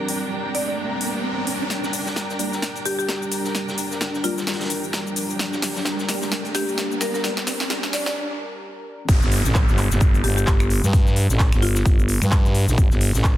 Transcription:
Already playing: G3 C4 D4 G4 A#4 G5 A#5, riser
0.09 open hi-hat
0.55 D5, open hi-hat
0.68 D5
1.01 open hi-hat
1.47 open hi-hat
1.70 G3 D4 A#4, snare, closed hi-hat, riser, shaker
1.83 snare, shaker
1.93 open hi-hat, shaker
2.06 snare, shaker
2.16 snare, closed hi-hat, shaker
2.30 snare, shaker
2.39 G3 A#3 D4 A#4, closed hi-hat, open hi-hat, shaker
2.52 snare, shaker
2.62 snare, closed hi-hat, shaker
2.75 closed hi-hat, shaker
2.85 G4, closed hi-hat, open hi-hat, shaker
2.99 G4, shaker
3.09 snare, closed hi-hat, shaker
3.22 shaker
3.31 closed hi-hat, open hi-hat, shaker
3.44 snare, shaker
3.55 snare, closed hi-hat, shaker
3.68 snare, shaker
3.78 closed hi-hat, open hi-hat, shaker
3.91 snare, shaker
4.01 snare, closed hi-hat, shaker
4.14 snare, shaker
4.24 G3 A#3 D4 F4 A#4, closed hi-hat, open hi-hat, shaker
4.38 snare, shaker
4.47 snare, closed hi-hat, shaker
4.53 snare, closed hi-hat
4.60 snare, closed hi-hat, shaker
4.65 snare, closed hi-hat
4.70 closed hi-hat, open hi-hat, shaker
4.84 shaker
4.93 snare, closed hi-hat, shaker
5.07 shaker
5.16 closed hi-hat, open hi-hat, shaker
5.30 shaker
5.39 snare, closed hi-hat, shaker
5.52 snare, shaker
5.62 snare, open hi-hat, shaker
5.76 snare, shaker
5.85 snare, closed hi-hat, shaker
5.99 snare, shaker
6.09 G3 A#3 D4 A#4, snare, closed hi-hat, open hi-hat, shaker
6.21 snare, shaker
6.32 snare, closed hi-hat, shaker
6.45 closed hi-hat, shaker
6.54 G4, snare, closed hi-hat, open hi-hat, shaker
6.69 shaker
6.77 snare, closed hi-hat, shaker
6.92 shaker
7.00 G3 A#3 D4 A#4, snare, closed hi-hat, open hi-hat, shaker
7.14 A#4, snare, shaker
7.24 G3 A#3 D4 A#4, snare, closed hi-hat, shaker
7.37 snare, shaker
7.47 snare, closed hi-hat, open hi-hat, shaker
7.60 snare, shaker
7.70 G3 A#3 D4 A#4, snare, closed hi-hat, shaker
7.83 snare, shaker
7.93 D5, snare, closed hi-hat, open hi-hat, shaker
8.06 D5, snare, shaker
9.09 G1 G3 D4, kick, closed hi-hat, crash, downlifter, shaker
9.22 G1, snare, shaker
9.31 open hi-hat
9.45 A1, snare, shaker
9.55 kick, snare, clap, closed hi-hat, shaker
9.68 G1, snare, shaker
9.78 clap, closed hi-hat, open hi-hat
9.91 G1, snare, shaker
10.00 kick, closed hi-hat, shaker
10.14 closed hi-hat, shaker
10.24 G1 G4, closed hi-hat, open hi-hat
10.37 G4, shaker
10.47 G1, kick, snare, clap, closed hi-hat, shaker
10.60 finger snap, shaker
10.70 closed hi-hat, open hi-hat
10.83 G2, snare, shaker
10.93 kick, closed hi-hat, shaker
11.07 snare, shaker
11.16 closed hi-hat, open hi-hat
11.29 A1, snare, shaker
11.39 kick, snare, clap, closed hi-hat, shaker
11.52 G1, finger snap, snare, shaker
11.62 F4, closed hi-hat, open hi-hat
11.75 snare, shaker
11.85 G1, kick, closed hi-hat, shaker
11.99 shaker
12.09 closed hi-hat, open hi-hat
12.22 G2, finger snap, shaker
12.31 kick, clap, closed hi-hat, shaker
12.45 snare, shaker
12.55 open hi-hat
12.68 A#1, snare, shaker
12.78 G1, kick, closed hi-hat, shaker
12.91 G1, snare, shaker
13.01 open hi-hat
13.14 A1, snare, shaker
13.24 kick, snare, clap, closed hi-hat, shaker

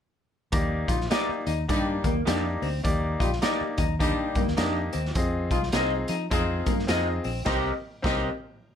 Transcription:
0.52 D#2 A#3 D#4 G4 D5, kick, closed hi-hat
0.88 A#1 G3 D#4 F4 G4, kick, closed hi-hat
1.01 snare
1.10 A#3 D#4 G4 D5, snare, closed hi-hat
1.29 muted fingered electric bass stroke
1.47 D#2 D#4, closed hi-hat
1.68 G2 G3 A#3 D4 D#4 G4 D5, kick, closed hi-hat
2.04 D#2 A#3, kick, closed hi-hat
2.25 F2 A#3 D4 D#4 G4 D5, snare, closed hi-hat
2.62 D2 C4, open hi-hat
2.83 D#2 A#3 D#4 G4 D5, kick, closed hi-hat
3.20 A#1 G3 D#4 F4 G4, kick, closed hi-hat
3.33 snare
3.42 A#3 D#4 G4 D5, snare, closed hi-hat
3.61 muted fingered electric bass stroke
3.78 D#2 D#4, kick, closed hi-hat
3.99 G3 A#3 D4 D#4 G4 D5, kick, closed hi-hat
4.35 G2 A#3, kick, closed hi-hat
4.47 D#2, snare
4.57 F2 A#3 D4 D#4 G4 D5 D#5, snare, closed hi-hat
4.93 D#2 C4, closed hi-hat
5.05 snare
5.15 F2 C4 F4 G#4 D#5, kick, closed hi-hat
5.51 C2 D#4 F4 G#4, kick, closed hi-hat
5.63 snare
5.72 C2 C4 D#4 F4 G#4 D#5, snare, closed hi-hat
6.08 F3 D#4, closed hi-hat
6.30 F2 C4 D#4 F4 G#4 D#5, kick, closed hi-hat
6.66 G2 A#3, kick, closed hi-hat
6.79 snare
6.87 F2 C4 D#4 F4 G#4 D#5, snare, closed hi-hat
7.24 A#1 C4, open hi-hat
7.44 C2 C4 D#4 G4 A#4 D#5, kick, snare, crash
8.02 C2 C4 D#4 G4 A#4 D#5, kick, snare

